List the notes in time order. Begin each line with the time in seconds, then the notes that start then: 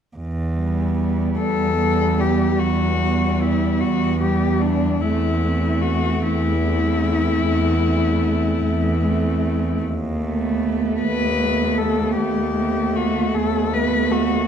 0.16 E2
0.56 G3 B3
1.39 E2 A4
1.79 G3 B3
2.20 G4
2.60 E2 F#4
3.01 G3 B3
3.41 E4
3.80 E2 F#4
4.21 G3 B3 G4
4.61 D4
5.01 E2 A3 C4 E4
5.42 A3 C4
5.82 F#4
6.23 E2 E4
6.63 A3 C4
7.43 E2
7.83 A3 C4
8.62 E2
9.03 A3 C4
9.82 D#2
10.21 A3 B3
11.00 D#2 B4
11.40 A3 B3
11.78 A4
12.16 D#2 G4
12.56 A3 B3
12.96 F#4
13.35 D#2 A4
13.73 A3 B3 B4
14.12 F#4